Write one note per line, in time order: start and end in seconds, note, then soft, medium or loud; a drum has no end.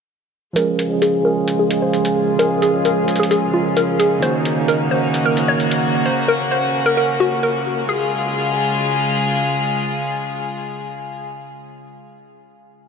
0.53 7.85 C#3 medium
0.53 0.85 F3 medium
0.53 0.86 G#3 medium
0.53 4.19 G#3 medium
0.53 0.87 C#4 medium
0.53 4.19 F4 medium
0.53 4.19 G#4 medium
0.53 0.99 A#4 loud
0.53 closed hi-hat medium
0.59 0.88 G#4 loud
0.79 closed hi-hat medium
0.88 1.19 F3 medium
0.88 1.20 G#3 medium
0.88 1.21 C#4 medium
0.93 1.22 G#4 medium
1.02 1.21 G#4 medium
1.02 closed hi-hat medium
1.22 1.64 F3 medium
1.22 1.65 G#3 medium
1.22 1.66 C#4 medium
1.22 1.57 A#4 medium
1.28 1.66 G#4 medium
1.48 closed hi-hat medium
1.59 1.78 G#4 medium
1.68 2.30 F3 medium
1.68 2.31 G#3 medium
1.68 2.31 C#4 medium
1.68 closed hi-hat medium
1.73 2.32 G#4 medium
1.82 2.36 C5 medium
1.93 closed hi-hat soft
2.05 closed hi-hat medium
2.37 2.68 F3 medium
2.37 2.69 G#3 medium
2.37 2.70 C#4 medium
2.37 2.58 A#4 loud
2.37 closed hi-hat medium
2.42 2.71 G#4 loud
2.62 2.81 G#4 medium
2.62 closed hi-hat medium
2.71 3.03 F3 medium
2.71 3.04 G#3 medium
2.71 3.04 C#4 medium
2.77 3.05 G#4 medium
2.85 3.17 A#4 medium
2.85 closed hi-hat medium
3.05 3.47 F3 medium
3.05 3.48 G#3 medium
3.05 3.49 C#4 medium
3.05 closed hi-hat medium
3.11 3.50 G#4 medium
3.16 3.29 G#4 medium
3.16 closed hi-hat medium
3.23 closed hi-hat medium
3.31 3.50 G#4 medium
3.31 closed hi-hat medium
3.51 3.93 F3 medium
3.51 3.94 G#3 medium
3.51 3.95 C#4 medium
3.51 3.73 F4 medium
3.57 3.96 A#4 medium
3.77 3.96 A#4 medium
3.77 closed hi-hat medium
3.97 4.18 F3 medium
3.97 4.19 G#3 medium
3.97 4.20 C#4 medium
3.97 4.19 G#4 medium
3.97 closed hi-hat medium
4.02 4.21 G#4 medium
4.20 4.51 D#3 loud
4.20 4.52 A#3 medium
4.20 7.85 A#3 medium
4.20 4.53 C#4 medium
4.20 6.04 D#4 medium
4.20 7.85 F#4 medium
4.20 4.66 C5 loud
4.20 closed hi-hat medium
4.25 4.54 F#4 loud
4.45 closed hi-hat medium
4.54 4.86 D#3 medium
4.54 4.87 A#3 medium
4.54 4.88 C#4 medium
4.60 4.88 D#4 medium
4.68 4.88 A#4 medium
4.68 closed hi-hat medium
4.89 5.30 D#3 medium
4.89 5.31 A#3 medium
4.89 5.32 C#4 medium
4.89 5.23 C5 medium
4.94 5.33 F#4 medium
5.14 closed hi-hat medium
5.25 5.45 A#4 medium
5.35 5.96 D#3 medium
5.35 5.97 A#3 medium
5.35 5.98 C#4 medium
5.35 closed hi-hat medium
5.40 5.99 F#4 medium
5.48 6.02 C#5 medium
5.60 closed hi-hat soft
5.71 closed hi-hat medium
6.06 7.87 C#4 medium
6.06 6.25 C5 medium
6.28 6.48 A#4 medium
6.51 6.84 C5 medium
6.86 6.95 A#4 medium
6.97 7.17 A#4 medium
7.20 7.39 F#4 medium
7.43 7.86 A#4 medium
7.89 11.20 C#3 medium
7.89 11.20 G#3 medium
7.89 11.20 F4 medium
7.89 9.22 G#4 medium
7.89 11.20 G#4 medium